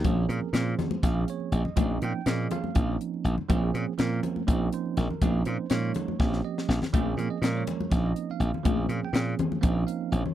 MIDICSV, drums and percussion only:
0, 0, Header, 1, 2, 480
1, 0, Start_track
1, 0, Tempo, 491803
1, 46, Time_signature, 7, 3, 24, 8
1, 10093, End_track
2, 0, Start_track
2, 0, Title_t, "Drums"
2, 42, Note_on_c, 9, 63, 95
2, 44, Note_on_c, 9, 36, 106
2, 44, Note_on_c, 9, 42, 73
2, 140, Note_off_c, 9, 63, 0
2, 141, Note_off_c, 9, 42, 0
2, 142, Note_off_c, 9, 36, 0
2, 163, Note_on_c, 9, 64, 26
2, 261, Note_off_c, 9, 64, 0
2, 283, Note_on_c, 9, 64, 29
2, 292, Note_on_c, 9, 42, 58
2, 381, Note_off_c, 9, 64, 0
2, 389, Note_off_c, 9, 42, 0
2, 400, Note_on_c, 9, 64, 29
2, 498, Note_off_c, 9, 64, 0
2, 524, Note_on_c, 9, 42, 81
2, 534, Note_on_c, 9, 38, 98
2, 621, Note_off_c, 9, 42, 0
2, 632, Note_off_c, 9, 38, 0
2, 768, Note_on_c, 9, 64, 94
2, 773, Note_on_c, 9, 42, 53
2, 783, Note_on_c, 9, 38, 31
2, 865, Note_off_c, 9, 64, 0
2, 870, Note_off_c, 9, 42, 0
2, 881, Note_off_c, 9, 38, 0
2, 886, Note_on_c, 9, 63, 75
2, 984, Note_off_c, 9, 63, 0
2, 1007, Note_on_c, 9, 36, 99
2, 1011, Note_on_c, 9, 42, 84
2, 1022, Note_on_c, 9, 38, 33
2, 1105, Note_off_c, 9, 36, 0
2, 1109, Note_off_c, 9, 42, 0
2, 1120, Note_off_c, 9, 38, 0
2, 1249, Note_on_c, 9, 42, 59
2, 1347, Note_off_c, 9, 42, 0
2, 1367, Note_on_c, 9, 64, 29
2, 1464, Note_off_c, 9, 64, 0
2, 1486, Note_on_c, 9, 42, 63
2, 1584, Note_off_c, 9, 42, 0
2, 1610, Note_on_c, 9, 64, 66
2, 1708, Note_off_c, 9, 64, 0
2, 1724, Note_on_c, 9, 42, 85
2, 1727, Note_on_c, 9, 63, 92
2, 1728, Note_on_c, 9, 36, 107
2, 1821, Note_off_c, 9, 42, 0
2, 1824, Note_off_c, 9, 63, 0
2, 1826, Note_off_c, 9, 36, 0
2, 1855, Note_on_c, 9, 64, 26
2, 1953, Note_off_c, 9, 64, 0
2, 1969, Note_on_c, 9, 42, 59
2, 1980, Note_on_c, 9, 64, 27
2, 2067, Note_off_c, 9, 42, 0
2, 2078, Note_off_c, 9, 64, 0
2, 2101, Note_on_c, 9, 64, 26
2, 2198, Note_off_c, 9, 64, 0
2, 2207, Note_on_c, 9, 42, 81
2, 2217, Note_on_c, 9, 38, 101
2, 2304, Note_off_c, 9, 42, 0
2, 2315, Note_off_c, 9, 38, 0
2, 2447, Note_on_c, 9, 42, 59
2, 2453, Note_on_c, 9, 64, 84
2, 2544, Note_off_c, 9, 42, 0
2, 2551, Note_off_c, 9, 64, 0
2, 2574, Note_on_c, 9, 63, 63
2, 2672, Note_off_c, 9, 63, 0
2, 2685, Note_on_c, 9, 42, 73
2, 2690, Note_on_c, 9, 36, 97
2, 2783, Note_off_c, 9, 42, 0
2, 2788, Note_off_c, 9, 36, 0
2, 2936, Note_on_c, 9, 42, 54
2, 3034, Note_off_c, 9, 42, 0
2, 3063, Note_on_c, 9, 64, 23
2, 3160, Note_off_c, 9, 64, 0
2, 3177, Note_on_c, 9, 42, 58
2, 3274, Note_off_c, 9, 42, 0
2, 3296, Note_on_c, 9, 64, 58
2, 3393, Note_off_c, 9, 64, 0
2, 3412, Note_on_c, 9, 42, 78
2, 3413, Note_on_c, 9, 36, 100
2, 3418, Note_on_c, 9, 63, 85
2, 3510, Note_off_c, 9, 36, 0
2, 3510, Note_off_c, 9, 42, 0
2, 3516, Note_off_c, 9, 63, 0
2, 3538, Note_on_c, 9, 64, 23
2, 3635, Note_off_c, 9, 64, 0
2, 3659, Note_on_c, 9, 42, 56
2, 3756, Note_off_c, 9, 42, 0
2, 3777, Note_on_c, 9, 64, 25
2, 3874, Note_off_c, 9, 64, 0
2, 3890, Note_on_c, 9, 42, 78
2, 3901, Note_on_c, 9, 38, 103
2, 3988, Note_off_c, 9, 42, 0
2, 3998, Note_off_c, 9, 38, 0
2, 4130, Note_on_c, 9, 64, 81
2, 4134, Note_on_c, 9, 42, 55
2, 4228, Note_off_c, 9, 64, 0
2, 4232, Note_off_c, 9, 42, 0
2, 4256, Note_on_c, 9, 63, 57
2, 4354, Note_off_c, 9, 63, 0
2, 4372, Note_on_c, 9, 36, 97
2, 4375, Note_on_c, 9, 42, 84
2, 4470, Note_off_c, 9, 36, 0
2, 4472, Note_off_c, 9, 42, 0
2, 4612, Note_on_c, 9, 42, 62
2, 4709, Note_off_c, 9, 42, 0
2, 4739, Note_on_c, 9, 64, 25
2, 4837, Note_off_c, 9, 64, 0
2, 4850, Note_on_c, 9, 42, 59
2, 4861, Note_on_c, 9, 38, 34
2, 4948, Note_off_c, 9, 42, 0
2, 4959, Note_off_c, 9, 38, 0
2, 4982, Note_on_c, 9, 64, 60
2, 5079, Note_off_c, 9, 64, 0
2, 5091, Note_on_c, 9, 36, 110
2, 5091, Note_on_c, 9, 42, 82
2, 5101, Note_on_c, 9, 63, 85
2, 5188, Note_off_c, 9, 36, 0
2, 5189, Note_off_c, 9, 42, 0
2, 5199, Note_off_c, 9, 63, 0
2, 5323, Note_on_c, 9, 42, 62
2, 5337, Note_on_c, 9, 64, 24
2, 5421, Note_off_c, 9, 42, 0
2, 5434, Note_off_c, 9, 64, 0
2, 5561, Note_on_c, 9, 42, 83
2, 5572, Note_on_c, 9, 38, 101
2, 5658, Note_off_c, 9, 42, 0
2, 5669, Note_off_c, 9, 38, 0
2, 5802, Note_on_c, 9, 42, 60
2, 5815, Note_on_c, 9, 64, 85
2, 5900, Note_off_c, 9, 42, 0
2, 5913, Note_off_c, 9, 64, 0
2, 5936, Note_on_c, 9, 63, 60
2, 5936, Note_on_c, 9, 64, 25
2, 6034, Note_off_c, 9, 63, 0
2, 6034, Note_off_c, 9, 64, 0
2, 6048, Note_on_c, 9, 36, 101
2, 6057, Note_on_c, 9, 38, 58
2, 6146, Note_off_c, 9, 36, 0
2, 6154, Note_off_c, 9, 38, 0
2, 6177, Note_on_c, 9, 38, 54
2, 6274, Note_off_c, 9, 38, 0
2, 6423, Note_on_c, 9, 38, 67
2, 6521, Note_off_c, 9, 38, 0
2, 6537, Note_on_c, 9, 38, 87
2, 6635, Note_off_c, 9, 38, 0
2, 6655, Note_on_c, 9, 64, 66
2, 6665, Note_on_c, 9, 38, 79
2, 6753, Note_off_c, 9, 64, 0
2, 6763, Note_off_c, 9, 38, 0
2, 6771, Note_on_c, 9, 36, 106
2, 6772, Note_on_c, 9, 42, 82
2, 6776, Note_on_c, 9, 63, 81
2, 6868, Note_off_c, 9, 36, 0
2, 6870, Note_off_c, 9, 42, 0
2, 6874, Note_off_c, 9, 63, 0
2, 6892, Note_on_c, 9, 64, 25
2, 6989, Note_off_c, 9, 64, 0
2, 7014, Note_on_c, 9, 42, 55
2, 7017, Note_on_c, 9, 64, 24
2, 7112, Note_off_c, 9, 42, 0
2, 7115, Note_off_c, 9, 64, 0
2, 7135, Note_on_c, 9, 64, 27
2, 7233, Note_off_c, 9, 64, 0
2, 7250, Note_on_c, 9, 42, 77
2, 7260, Note_on_c, 9, 38, 102
2, 7347, Note_off_c, 9, 42, 0
2, 7358, Note_off_c, 9, 38, 0
2, 7486, Note_on_c, 9, 42, 55
2, 7490, Note_on_c, 9, 64, 90
2, 7584, Note_off_c, 9, 42, 0
2, 7588, Note_off_c, 9, 64, 0
2, 7618, Note_on_c, 9, 63, 68
2, 7715, Note_off_c, 9, 63, 0
2, 7725, Note_on_c, 9, 36, 100
2, 7725, Note_on_c, 9, 42, 75
2, 7735, Note_on_c, 9, 38, 33
2, 7822, Note_off_c, 9, 42, 0
2, 7823, Note_off_c, 9, 36, 0
2, 7833, Note_off_c, 9, 38, 0
2, 7966, Note_on_c, 9, 42, 57
2, 8063, Note_off_c, 9, 42, 0
2, 8101, Note_on_c, 9, 64, 28
2, 8198, Note_off_c, 9, 64, 0
2, 8205, Note_on_c, 9, 42, 61
2, 8302, Note_off_c, 9, 42, 0
2, 8337, Note_on_c, 9, 64, 68
2, 8435, Note_off_c, 9, 64, 0
2, 8444, Note_on_c, 9, 42, 80
2, 8446, Note_on_c, 9, 36, 105
2, 8455, Note_on_c, 9, 63, 90
2, 8542, Note_off_c, 9, 42, 0
2, 8543, Note_off_c, 9, 36, 0
2, 8552, Note_off_c, 9, 63, 0
2, 8587, Note_on_c, 9, 64, 26
2, 8682, Note_on_c, 9, 42, 53
2, 8684, Note_off_c, 9, 64, 0
2, 8702, Note_on_c, 9, 64, 29
2, 8780, Note_off_c, 9, 42, 0
2, 8800, Note_off_c, 9, 64, 0
2, 8816, Note_on_c, 9, 64, 26
2, 8914, Note_off_c, 9, 64, 0
2, 8925, Note_on_c, 9, 42, 75
2, 8936, Note_on_c, 9, 38, 109
2, 9023, Note_off_c, 9, 42, 0
2, 9033, Note_off_c, 9, 38, 0
2, 9163, Note_on_c, 9, 42, 58
2, 9168, Note_on_c, 9, 64, 94
2, 9261, Note_off_c, 9, 42, 0
2, 9265, Note_off_c, 9, 64, 0
2, 9290, Note_on_c, 9, 63, 71
2, 9388, Note_off_c, 9, 63, 0
2, 9399, Note_on_c, 9, 42, 89
2, 9402, Note_on_c, 9, 36, 104
2, 9496, Note_off_c, 9, 42, 0
2, 9500, Note_off_c, 9, 36, 0
2, 9643, Note_on_c, 9, 42, 64
2, 9741, Note_off_c, 9, 42, 0
2, 9768, Note_on_c, 9, 64, 29
2, 9866, Note_off_c, 9, 64, 0
2, 9884, Note_on_c, 9, 42, 62
2, 9982, Note_off_c, 9, 42, 0
2, 10010, Note_on_c, 9, 64, 80
2, 10093, Note_off_c, 9, 64, 0
2, 10093, End_track
0, 0, End_of_file